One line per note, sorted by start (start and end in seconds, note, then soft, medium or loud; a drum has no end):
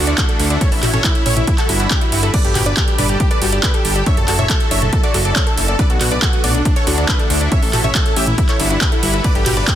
0.00 0.14 D2 loud
0.00 0.60 D3 medium
0.00 1.45 A3 medium
0.00 2.31 E4 medium
0.00 0.60 F#4 medium
0.07 0.16 D4 medium
0.07 0.13 D5 loud
0.07 closed hi-hat medium
0.18 0.26 D4 medium
0.18 0.26 F#4 loud
0.18 0.26 F#4 medium
0.18 0.27 A4 medium
0.18 kick loud
0.18 clap loud
0.18 closed hi-hat medium
0.29 0.37 D4 medium
0.29 0.35 A4 loud
0.29 closed hi-hat medium
0.39 0.58 D2 loud
0.39 0.48 D4 medium
0.39 open hi-hat loud
0.50 0.59 D4 medium
0.50 0.57 D5 medium
0.50 closed hi-hat medium
0.61 0.67 C#4 medium
0.61 1.47 C#4 medium
0.61 0.70 A4 medium
0.61 0.70 C#5 loud
0.61 kick loud
0.61 closed hi-hat medium
0.72 0.81 A1 loud
0.72 0.80 E4 medium
0.72 0.76 A4 medium
0.72 open hi-hat medium
0.83 1.01 A1 medium
0.83 0.91 E4 medium
0.83 0.89 F#4 loud
0.83 clap soft
0.83 open hi-hat loud
0.83 mid tom medium
0.93 0.97 C#4 medium
0.93 1.02 A4 medium
0.93 1.02 C#5 medium
0.93 closed hi-hat medium
0.93 mid tom medium
1.04 1.13 E4 medium
1.04 1.14 A4 medium
1.04 kick loud
1.04 clap loud
1.04 closed hi-hat medium
1.15 1.24 E4 medium
1.15 closed hi-hat medium
1.26 1.44 A1 medium
1.26 1.32 C#4 medium
1.26 1.34 E4 medium
1.26 1.34 C#5 loud
1.26 open hi-hat loud
1.26 mid tom medium
1.37 1.45 E4 medium
1.37 closed hi-hat medium
1.37 mid tom medium
1.47 2.33 G3 medium
1.47 1.56 E4 medium
1.47 2.33 F#4 medium
1.47 4.04 B4 medium
1.47 kick loud
1.47 closed hi-hat medium
1.58 1.67 F#4 medium
1.58 1.67 A4 medium
1.58 1.62 A4 medium
1.58 1.67 A4 medium
1.58 clap soft
1.58 closed hi-hat medium
1.69 1.87 G1 loud
1.69 1.77 E4 medium
1.69 1.78 E4 medium
1.69 1.75 F#4 medium
1.69 open hi-hat loud
1.80 1.86 D4 loud
1.80 1.88 E4 medium
1.80 closed hi-hat medium
1.91 1.97 D4 loud
1.91 1.99 E4 medium
1.91 1.99 G4 medium
1.91 kick loud
1.91 clap loud
1.91 closed hi-hat medium
2.01 2.10 E4 medium
2.01 2.08 F#4 medium
2.01 closed hi-hat medium
2.12 2.30 G1 loud
2.12 2.21 E4 medium
2.12 open hi-hat loud
2.23 2.31 E4 medium
2.23 2.32 A4 loud
2.23 closed hi-hat medium
2.34 4.05 G3 medium
2.34 6.61 D4 medium
2.34 2.40 D4 medium
2.34 5.76 A4 medium
2.34 2.42 B4 medium
2.34 2.42 D5 loud
2.34 kick loud
2.34 closed hi-hat medium
2.34 crash medium
2.44 2.54 G1 loud
2.44 2.53 G4 medium
2.44 2.48 A4 medium
2.44 closed hi-hat medium
2.55 2.73 G1 loud
2.55 2.62 F#4 loud
2.55 2.64 G4 medium
2.55 clap soft
2.55 open hi-hat loud
2.55 mid tom medium
2.66 2.70 D4 medium
2.66 2.75 B4 medium
2.66 2.75 D5 medium
2.66 2.75 D5 loud
2.66 closed hi-hat medium
2.77 2.85 G4 medium
2.77 2.86 A4 medium
2.77 kick loud
2.77 clap loud
2.77 closed hi-hat medium
2.88 2.96 G4 medium
2.88 closed hi-hat medium
2.98 3.17 G1 medium
2.98 3.05 D4 medium
2.98 3.07 B4 medium
2.98 3.07 D5 loud
2.98 open hi-hat loud
2.98 mid tom medium
3.09 3.18 G4 medium
3.09 closed hi-hat medium
3.20 3.29 G4 medium
3.20 kick loud
3.20 closed hi-hat medium
3.31 3.35 A4 medium
3.31 3.39 B4 medium
3.31 3.39 D5 medium
3.31 closed hi-hat medium
3.42 3.60 G1 loud
3.42 3.48 F#4 loud
3.42 3.50 G4 medium
3.42 open hi-hat loud
3.52 3.61 G4 medium
3.52 3.59 D5 loud
3.52 closed hi-hat medium
3.63 3.72 G4 medium
3.63 3.73 A4 medium
3.63 3.72 B4 loud
3.63 kick loud
3.63 clap loud
3.63 closed hi-hat medium
3.74 3.83 G4 medium
3.74 3.80 A4 loud
3.74 closed hi-hat medium
3.85 4.03 G1 loud
3.85 3.93 G4 medium
3.85 open hi-hat loud
3.96 4.04 G4 medium
3.96 4.02 D5 medium
3.96 closed hi-hat medium
4.06 5.77 F#3 medium
4.06 4.13 D4 medium
4.06 5.77 E4 medium
4.06 4.15 C#5 medium
4.06 4.15 E5 loud
4.06 kick loud
4.06 closed hi-hat medium
4.17 4.26 F#1 loud
4.17 4.26 A4 medium
4.17 4.21 A4 medium
4.17 4.26 A4 medium
4.17 closed hi-hat medium
4.28 4.46 F#1 loud
4.28 4.34 F#4 loud
4.28 4.36 A4 medium
4.28 4.37 A4 medium
4.28 clap soft
4.28 open hi-hat loud
4.39 4.43 D4 medium
4.39 4.47 C#5 medium
4.39 4.47 E5 medium
4.39 closed hi-hat medium
4.39 mid tom medium
4.50 4.58 A4 medium
4.50 4.59 A4 medium
4.50 4.58 A4 medium
4.50 kick loud
4.50 clap loud
4.50 closed hi-hat medium
4.60 4.69 A4 medium
4.60 closed hi-hat medium
4.71 4.89 F#1 medium
4.71 4.77 D4 medium
4.71 4.80 C#5 medium
4.71 4.80 E5 loud
4.71 4.80 E5 medium
4.71 open hi-hat loud
4.82 4.90 A4 medium
4.82 closed hi-hat medium
4.82 mid tom medium
4.93 5.01 A4 medium
4.93 kick loud
4.93 closed hi-hat medium
5.03 5.12 F#4 medium
5.03 5.07 A4 medium
5.03 5.12 D5 medium
5.03 closed hi-hat medium
5.14 5.32 F#1 loud
5.14 5.21 F#4 loud
5.14 5.23 A4 medium
5.14 open hi-hat loud
5.25 5.33 A4 medium
5.25 5.34 A4 medium
5.25 5.31 D5 loud
5.25 closed hi-hat medium
5.36 5.44 A4 medium
5.36 5.45 A4 medium
5.36 5.44 C#5 loud
5.36 5.44 C#5 medium
5.36 kick loud
5.36 clap loud
5.36 closed hi-hat medium
5.47 5.55 A4 medium
5.47 5.53 A4 loud
5.47 closed hi-hat medium
5.57 5.76 F#1 loud
5.57 5.66 A4 medium
5.57 open hi-hat loud
5.68 5.77 A4 medium
5.68 5.75 D5 medium
5.68 closed hi-hat medium
5.79 8.36 A3 medium
5.79 6.65 B3 medium
5.79 5.85 D4 medium
5.79 5.88 B4 medium
5.79 5.88 D5 loud
5.79 kick loud
5.79 closed hi-hat medium
5.90 5.99 B1 loud
5.90 5.98 F#4 medium
5.90 5.94 A4 medium
5.90 closed hi-hat medium
6.01 6.19 B1 loud
6.01 6.09 F#4 medium
6.01 6.07 F#4 loud
6.01 6.09 F#4 medium
6.01 clap soft
6.01 open hi-hat loud
6.01 mid tom medium
6.11 6.15 D4 medium
6.11 6.20 B4 medium
6.11 6.20 D5 loud
6.11 closed hi-hat medium
6.22 6.31 F#4 medium
6.22 6.32 A4 medium
6.22 kick loud
6.22 clap loud
6.22 closed hi-hat medium
6.33 6.41 F#4 medium
6.33 6.42 F#4 medium
6.33 closed hi-hat medium
6.44 6.62 B1 medium
6.44 6.50 D4 medium
6.44 6.52 F#4 medium
6.44 6.52 D5 loud
6.44 open hi-hat loud
6.44 mid tom medium
6.55 6.63 D4 medium
6.55 closed hi-hat medium
6.65 7.51 D3 medium
6.65 6.74 D4 medium
6.65 8.36 E4 medium
6.65 7.51 F#4 medium
6.65 kick loud
6.65 closed hi-hat medium
6.76 6.80 A4 medium
6.76 6.85 A4 medium
6.76 6.85 C#5 loud
6.76 closed hi-hat medium
6.87 7.05 D2 loud
6.87 6.95 D4 medium
6.87 6.96 D4 medium
6.87 6.93 F#4 loud
6.87 open hi-hat loud
6.98 7.06 D4 medium
6.98 7.04 D5 loud
6.98 closed hi-hat medium
7.09 7.17 D4 medium
7.09 7.18 A4 medium
7.09 7.17 B4 loud
7.09 7.17 B4 medium
7.09 kick loud
7.09 clap loud
7.09 closed hi-hat medium
7.19 7.28 D4 medium
7.19 7.26 A4 loud
7.19 closed hi-hat medium
7.30 7.48 D2 loud
7.30 7.39 D4 medium
7.30 open hi-hat loud
7.41 7.49 D4 medium
7.41 7.50 D4 medium
7.41 7.47 D5 medium
7.41 closed hi-hat medium
7.52 7.58 C#4 medium
7.52 8.37 C#4 medium
7.52 7.60 C#5 medium
7.52 7.60 E5 loud
7.52 kick loud
7.52 closed hi-hat medium
7.62 7.72 A1 loud
7.62 7.71 A4 medium
7.62 7.66 A4 medium
7.62 7.71 A4 medium
7.62 open hi-hat medium
7.73 7.91 A1 medium
7.73 7.80 F#4 loud
7.73 7.82 A4 medium
7.73 clap soft
7.73 open hi-hat loud
7.73 mid tom medium
7.84 7.88 C#4 medium
7.84 7.93 C#5 medium
7.84 7.93 E5 medium
7.84 7.93 E5 loud
7.84 closed hi-hat soft
7.84 mid tom medium
7.95 8.04 A4 medium
7.95 8.03 A4 medium
7.95 kick loud
7.95 clap loud
7.95 closed hi-hat medium
8.06 8.14 A4 medium
8.06 closed hi-hat medium
8.16 8.35 A1 medium
8.16 8.23 C#4 medium
8.16 8.25 G4 medium
8.16 8.25 E5 loud
8.16 open hi-hat loud
8.27 8.36 E4 medium
8.27 closed hi-hat soft
8.27 mid tom medium
8.38 9.75 G3 medium
8.38 9.24 E4 medium
8.38 8.47 E4 medium
8.38 9.24 F#4 medium
8.38 9.75 B4 medium
8.38 kick loud
8.38 closed hi-hat medium
8.49 8.57 E4 medium
8.49 8.53 A4 medium
8.49 8.57 C#5 medium
8.49 clap soft
8.49 closed hi-hat medium
8.60 8.78 G1 loud
8.60 8.69 D4 loud
8.60 8.68 E4 medium
8.60 open hi-hat loud
8.70 8.80 D4 loud
8.70 8.79 E4 medium
8.70 closed hi-hat medium
8.81 8.91 D4 medium
8.81 8.90 G4 medium
8.81 8.90 B4 loud
8.81 kick loud
8.81 clap loud
8.81 closed hi-hat medium
8.92 9.01 E4 medium
8.92 8.98 A4 medium
8.92 closed hi-hat medium
9.03 9.21 G1 loud
9.03 9.11 E4 medium
9.03 open hi-hat loud
9.14 9.22 E4 medium
9.14 9.23 A4 medium
9.24 9.31 D4 medium
9.24 9.75 D4 medium
9.24 9.75 A4 medium
9.24 9.33 B4 medium
9.24 9.33 D5 loud
9.24 kick loud
9.24 closed hi-hat medium
9.24 ride medium
9.35 9.44 G1 loud
9.35 9.44 G4 medium
9.35 9.39 A4 medium
9.35 closed hi-hat soft
9.46 9.64 G1 loud
9.46 9.52 F#4 loud
9.46 9.54 G4 medium
9.46 9.55 G4 medium
9.46 clap soft
9.46 open hi-hat loud
9.46 mid tom medium
9.46 ride medium
9.57 9.61 D4 medium
9.57 9.65 B4 medium
9.57 9.65 D5 medium
9.57 closed hi-hat soft
9.68 9.75 G4 medium
9.68 9.75 A4 medium
9.68 kick loud
9.68 clap loud
9.68 closed hi-hat medium
9.68 ride medium